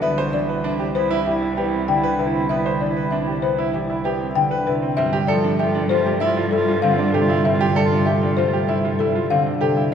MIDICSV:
0, 0, Header, 1, 6, 480
1, 0, Start_track
1, 0, Tempo, 618557
1, 19, Time_signature, 4, 2, 24, 8
1, 7713, End_track
2, 0, Start_track
2, 0, Title_t, "Marimba"
2, 0, Program_c, 0, 12
2, 14, Note_on_c, 0, 76, 106
2, 174, Note_off_c, 0, 76, 0
2, 257, Note_on_c, 0, 74, 82
2, 414, Note_off_c, 0, 74, 0
2, 504, Note_on_c, 0, 76, 69
2, 657, Note_off_c, 0, 76, 0
2, 738, Note_on_c, 0, 72, 90
2, 895, Note_off_c, 0, 72, 0
2, 979, Note_on_c, 0, 76, 74
2, 1135, Note_off_c, 0, 76, 0
2, 1225, Note_on_c, 0, 71, 64
2, 1377, Note_off_c, 0, 71, 0
2, 1461, Note_on_c, 0, 79, 93
2, 1616, Note_off_c, 0, 79, 0
2, 1698, Note_on_c, 0, 71, 64
2, 1855, Note_off_c, 0, 71, 0
2, 1935, Note_on_c, 0, 76, 89
2, 2094, Note_off_c, 0, 76, 0
2, 2177, Note_on_c, 0, 74, 73
2, 2335, Note_off_c, 0, 74, 0
2, 2413, Note_on_c, 0, 76, 76
2, 2573, Note_off_c, 0, 76, 0
2, 2657, Note_on_c, 0, 72, 86
2, 2814, Note_off_c, 0, 72, 0
2, 2898, Note_on_c, 0, 76, 72
2, 3055, Note_off_c, 0, 76, 0
2, 3137, Note_on_c, 0, 71, 64
2, 3295, Note_off_c, 0, 71, 0
2, 3380, Note_on_c, 0, 79, 94
2, 3535, Note_off_c, 0, 79, 0
2, 3623, Note_on_c, 0, 71, 71
2, 3776, Note_off_c, 0, 71, 0
2, 3855, Note_on_c, 0, 76, 110
2, 4014, Note_off_c, 0, 76, 0
2, 4092, Note_on_c, 0, 74, 88
2, 4253, Note_off_c, 0, 74, 0
2, 4340, Note_on_c, 0, 76, 83
2, 4496, Note_off_c, 0, 76, 0
2, 4574, Note_on_c, 0, 72, 110
2, 4733, Note_off_c, 0, 72, 0
2, 4814, Note_on_c, 0, 76, 86
2, 4973, Note_off_c, 0, 76, 0
2, 5052, Note_on_c, 0, 69, 89
2, 5213, Note_off_c, 0, 69, 0
2, 5294, Note_on_c, 0, 77, 112
2, 5453, Note_off_c, 0, 77, 0
2, 5529, Note_on_c, 0, 69, 83
2, 5692, Note_off_c, 0, 69, 0
2, 5780, Note_on_c, 0, 76, 96
2, 5935, Note_off_c, 0, 76, 0
2, 6021, Note_on_c, 0, 74, 84
2, 6176, Note_off_c, 0, 74, 0
2, 6253, Note_on_c, 0, 76, 86
2, 6413, Note_off_c, 0, 76, 0
2, 6493, Note_on_c, 0, 72, 90
2, 6653, Note_off_c, 0, 72, 0
2, 6739, Note_on_c, 0, 76, 89
2, 6895, Note_off_c, 0, 76, 0
2, 6976, Note_on_c, 0, 69, 76
2, 7134, Note_off_c, 0, 69, 0
2, 7220, Note_on_c, 0, 77, 112
2, 7376, Note_off_c, 0, 77, 0
2, 7456, Note_on_c, 0, 69, 84
2, 7614, Note_off_c, 0, 69, 0
2, 7713, End_track
3, 0, Start_track
3, 0, Title_t, "Clarinet"
3, 0, Program_c, 1, 71
3, 13, Note_on_c, 1, 64, 43
3, 189, Note_off_c, 1, 64, 0
3, 264, Note_on_c, 1, 64, 58
3, 438, Note_off_c, 1, 64, 0
3, 513, Note_on_c, 1, 64, 70
3, 687, Note_off_c, 1, 64, 0
3, 757, Note_on_c, 1, 64, 85
3, 932, Note_off_c, 1, 64, 0
3, 1006, Note_on_c, 1, 64, 79
3, 1182, Note_off_c, 1, 64, 0
3, 1256, Note_on_c, 1, 64, 76
3, 1431, Note_off_c, 1, 64, 0
3, 1503, Note_on_c, 1, 64, 84
3, 1678, Note_off_c, 1, 64, 0
3, 1750, Note_on_c, 1, 64, 85
3, 1925, Note_off_c, 1, 64, 0
3, 2001, Note_on_c, 1, 64, 82
3, 2175, Note_off_c, 1, 64, 0
3, 2248, Note_on_c, 1, 64, 81
3, 2423, Note_off_c, 1, 64, 0
3, 2497, Note_on_c, 1, 64, 72
3, 2671, Note_off_c, 1, 64, 0
3, 2742, Note_on_c, 1, 64, 68
3, 2917, Note_off_c, 1, 64, 0
3, 2995, Note_on_c, 1, 64, 62
3, 3168, Note_off_c, 1, 64, 0
3, 3242, Note_on_c, 1, 64, 46
3, 3416, Note_off_c, 1, 64, 0
3, 3490, Note_on_c, 1, 64, 43
3, 3664, Note_off_c, 1, 64, 0
3, 3867, Note_on_c, 1, 65, 46
3, 4038, Note_off_c, 1, 65, 0
3, 4117, Note_on_c, 1, 65, 63
3, 4287, Note_off_c, 1, 65, 0
3, 4362, Note_on_c, 1, 65, 75
3, 4533, Note_off_c, 1, 65, 0
3, 4606, Note_on_c, 1, 65, 92
3, 4779, Note_off_c, 1, 65, 0
3, 4853, Note_on_c, 1, 65, 89
3, 5026, Note_off_c, 1, 65, 0
3, 5097, Note_on_c, 1, 65, 91
3, 5272, Note_off_c, 1, 65, 0
3, 5345, Note_on_c, 1, 65, 95
3, 5520, Note_off_c, 1, 65, 0
3, 5595, Note_on_c, 1, 65, 94
3, 5769, Note_off_c, 1, 65, 0
3, 5849, Note_on_c, 1, 65, 93
3, 6020, Note_off_c, 1, 65, 0
3, 6089, Note_on_c, 1, 65, 100
3, 6263, Note_off_c, 1, 65, 0
3, 6336, Note_on_c, 1, 65, 85
3, 6511, Note_off_c, 1, 65, 0
3, 6578, Note_on_c, 1, 65, 85
3, 6755, Note_off_c, 1, 65, 0
3, 6834, Note_on_c, 1, 65, 62
3, 7008, Note_off_c, 1, 65, 0
3, 7082, Note_on_c, 1, 65, 56
3, 7256, Note_off_c, 1, 65, 0
3, 7325, Note_on_c, 1, 65, 43
3, 7501, Note_off_c, 1, 65, 0
3, 7713, End_track
4, 0, Start_track
4, 0, Title_t, "Grand piano"
4, 0, Program_c, 2, 0
4, 17, Note_on_c, 2, 71, 97
4, 139, Note_on_c, 2, 72, 99
4, 174, Note_off_c, 2, 71, 0
4, 259, Note_on_c, 2, 62, 77
4, 295, Note_off_c, 2, 72, 0
4, 381, Note_on_c, 2, 71, 81
4, 415, Note_off_c, 2, 62, 0
4, 498, Note_on_c, 2, 62, 101
4, 536, Note_off_c, 2, 71, 0
4, 616, Note_on_c, 2, 67, 79
4, 655, Note_off_c, 2, 62, 0
4, 737, Note_on_c, 2, 71, 83
4, 774, Note_off_c, 2, 67, 0
4, 858, Note_on_c, 2, 64, 105
4, 894, Note_off_c, 2, 71, 0
4, 979, Note_on_c, 2, 67, 69
4, 1015, Note_off_c, 2, 64, 0
4, 1097, Note_on_c, 2, 64, 70
4, 1135, Note_off_c, 2, 67, 0
4, 1219, Note_on_c, 2, 67, 89
4, 1254, Note_off_c, 2, 64, 0
4, 1338, Note_on_c, 2, 60, 65
4, 1375, Note_off_c, 2, 67, 0
4, 1461, Note_on_c, 2, 62, 69
4, 1495, Note_off_c, 2, 60, 0
4, 1579, Note_on_c, 2, 71, 92
4, 1616, Note_off_c, 2, 62, 0
4, 1701, Note_on_c, 2, 64, 69
4, 1735, Note_off_c, 2, 71, 0
4, 1823, Note_on_c, 2, 60, 70
4, 1856, Note_off_c, 2, 64, 0
4, 1943, Note_on_c, 2, 71, 88
4, 1976, Note_off_c, 2, 60, 0
4, 2062, Note_on_c, 2, 72, 84
4, 2096, Note_off_c, 2, 71, 0
4, 2184, Note_on_c, 2, 62, 71
4, 2216, Note_off_c, 2, 72, 0
4, 2302, Note_on_c, 2, 71, 77
4, 2337, Note_off_c, 2, 62, 0
4, 2421, Note_on_c, 2, 62, 92
4, 2456, Note_off_c, 2, 71, 0
4, 2541, Note_on_c, 2, 67, 66
4, 2576, Note_off_c, 2, 62, 0
4, 2662, Note_on_c, 2, 71, 73
4, 2696, Note_off_c, 2, 67, 0
4, 2781, Note_on_c, 2, 64, 90
4, 2816, Note_off_c, 2, 71, 0
4, 2905, Note_on_c, 2, 67, 65
4, 2936, Note_off_c, 2, 64, 0
4, 3023, Note_on_c, 2, 64, 75
4, 3057, Note_off_c, 2, 67, 0
4, 3143, Note_on_c, 2, 67, 95
4, 3177, Note_off_c, 2, 64, 0
4, 3262, Note_on_c, 2, 60, 62
4, 3297, Note_off_c, 2, 67, 0
4, 3385, Note_on_c, 2, 62, 64
4, 3416, Note_off_c, 2, 60, 0
4, 3500, Note_on_c, 2, 71, 89
4, 3537, Note_off_c, 2, 62, 0
4, 3621, Note_on_c, 2, 64, 72
4, 3656, Note_off_c, 2, 71, 0
4, 3743, Note_on_c, 2, 60, 74
4, 3776, Note_off_c, 2, 64, 0
4, 3847, Note_off_c, 2, 60, 0
4, 3859, Note_on_c, 2, 60, 90
4, 3980, Note_on_c, 2, 67, 110
4, 4015, Note_off_c, 2, 60, 0
4, 4099, Note_on_c, 2, 69, 109
4, 4135, Note_off_c, 2, 67, 0
4, 4220, Note_on_c, 2, 62, 90
4, 4255, Note_off_c, 2, 69, 0
4, 4342, Note_on_c, 2, 67, 90
4, 4376, Note_off_c, 2, 62, 0
4, 4460, Note_on_c, 2, 62, 98
4, 4496, Note_off_c, 2, 67, 0
4, 4583, Note_on_c, 2, 65, 90
4, 4616, Note_off_c, 2, 62, 0
4, 4701, Note_on_c, 2, 67, 86
4, 4736, Note_off_c, 2, 65, 0
4, 4821, Note_on_c, 2, 64, 107
4, 4856, Note_off_c, 2, 67, 0
4, 4947, Note_on_c, 2, 65, 86
4, 4976, Note_off_c, 2, 64, 0
4, 5063, Note_on_c, 2, 64, 78
4, 5098, Note_off_c, 2, 65, 0
4, 5187, Note_on_c, 2, 65, 86
4, 5217, Note_off_c, 2, 64, 0
4, 5305, Note_on_c, 2, 60, 89
4, 5338, Note_off_c, 2, 65, 0
4, 5423, Note_on_c, 2, 62, 92
4, 5457, Note_off_c, 2, 60, 0
4, 5541, Note_on_c, 2, 67, 101
4, 5577, Note_off_c, 2, 62, 0
4, 5661, Note_on_c, 2, 64, 92
4, 5696, Note_off_c, 2, 67, 0
4, 5782, Note_on_c, 2, 60, 80
4, 5816, Note_off_c, 2, 64, 0
4, 5903, Note_on_c, 2, 67, 114
4, 5936, Note_off_c, 2, 60, 0
4, 6022, Note_on_c, 2, 69, 113
4, 6057, Note_off_c, 2, 67, 0
4, 6142, Note_on_c, 2, 62, 85
4, 6176, Note_off_c, 2, 69, 0
4, 6259, Note_on_c, 2, 67, 94
4, 6296, Note_off_c, 2, 62, 0
4, 6387, Note_on_c, 2, 62, 83
4, 6415, Note_off_c, 2, 67, 0
4, 6501, Note_on_c, 2, 65, 86
4, 6538, Note_off_c, 2, 62, 0
4, 6622, Note_on_c, 2, 67, 91
4, 6656, Note_off_c, 2, 65, 0
4, 6741, Note_on_c, 2, 64, 94
4, 6776, Note_off_c, 2, 67, 0
4, 6866, Note_on_c, 2, 65, 86
4, 6896, Note_off_c, 2, 64, 0
4, 6985, Note_on_c, 2, 64, 84
4, 7018, Note_off_c, 2, 65, 0
4, 7104, Note_on_c, 2, 65, 84
4, 7137, Note_off_c, 2, 64, 0
4, 7221, Note_on_c, 2, 60, 78
4, 7257, Note_off_c, 2, 65, 0
4, 7342, Note_on_c, 2, 62, 75
4, 7376, Note_off_c, 2, 60, 0
4, 7459, Note_on_c, 2, 67, 103
4, 7496, Note_off_c, 2, 62, 0
4, 7580, Note_on_c, 2, 64, 78
4, 7615, Note_off_c, 2, 67, 0
4, 7713, Note_off_c, 2, 64, 0
4, 7713, End_track
5, 0, Start_track
5, 0, Title_t, "Harp"
5, 0, Program_c, 3, 46
5, 19, Note_on_c, 3, 59, 89
5, 261, Note_on_c, 3, 52, 73
5, 501, Note_on_c, 3, 60, 70
5, 733, Note_off_c, 3, 59, 0
5, 742, Note_on_c, 3, 59, 85
5, 967, Note_off_c, 3, 52, 0
5, 977, Note_on_c, 3, 52, 71
5, 1213, Note_off_c, 3, 59, 0
5, 1222, Note_on_c, 3, 59, 73
5, 1463, Note_on_c, 3, 50, 92
5, 1704, Note_on_c, 3, 48, 73
5, 1932, Note_off_c, 3, 59, 0
5, 1941, Note_on_c, 3, 59, 84
5, 2179, Note_off_c, 3, 52, 0
5, 2189, Note_on_c, 3, 52, 59
5, 2414, Note_off_c, 3, 60, 0
5, 2423, Note_on_c, 3, 60, 67
5, 2655, Note_off_c, 3, 59, 0
5, 2664, Note_on_c, 3, 59, 75
5, 2894, Note_off_c, 3, 52, 0
5, 2903, Note_on_c, 3, 52, 68
5, 3133, Note_off_c, 3, 59, 0
5, 3142, Note_on_c, 3, 59, 64
5, 3372, Note_off_c, 3, 50, 0
5, 3382, Note_on_c, 3, 50, 85
5, 3615, Note_off_c, 3, 48, 0
5, 3624, Note_on_c, 3, 48, 75
5, 3863, Note_on_c, 3, 55, 114
5, 3880, Note_off_c, 3, 50, 0
5, 3880, Note_off_c, 3, 52, 0
5, 3880, Note_off_c, 3, 59, 0
5, 3881, Note_off_c, 3, 48, 0
5, 4106, Note_on_c, 3, 53, 77
5, 4344, Note_on_c, 3, 57, 82
5, 4574, Note_off_c, 3, 55, 0
5, 4583, Note_on_c, 3, 55, 96
5, 5053, Note_off_c, 3, 55, 0
5, 5063, Note_on_c, 3, 55, 76
5, 5303, Note_on_c, 3, 50, 108
5, 5449, Note_off_c, 3, 60, 0
5, 5543, Note_on_c, 3, 48, 86
5, 5774, Note_off_c, 3, 55, 0
5, 5783, Note_on_c, 3, 55, 94
5, 6255, Note_off_c, 3, 57, 0
5, 6265, Note_on_c, 3, 57, 75
5, 6490, Note_off_c, 3, 55, 0
5, 6500, Note_on_c, 3, 55, 93
5, 6974, Note_off_c, 3, 55, 0
5, 6983, Note_on_c, 3, 55, 83
5, 7132, Note_off_c, 3, 53, 0
5, 7216, Note_off_c, 3, 50, 0
5, 7225, Note_on_c, 3, 50, 106
5, 7456, Note_off_c, 3, 48, 0
5, 7465, Note_on_c, 3, 48, 76
5, 7691, Note_off_c, 3, 57, 0
5, 7713, Note_off_c, 3, 48, 0
5, 7713, Note_off_c, 3, 50, 0
5, 7713, Note_off_c, 3, 55, 0
5, 7713, End_track
6, 0, Start_track
6, 0, Title_t, "Cello"
6, 0, Program_c, 4, 42
6, 20, Note_on_c, 4, 36, 78
6, 3732, Note_off_c, 4, 36, 0
6, 3865, Note_on_c, 4, 43, 84
6, 7575, Note_off_c, 4, 43, 0
6, 7713, End_track
0, 0, End_of_file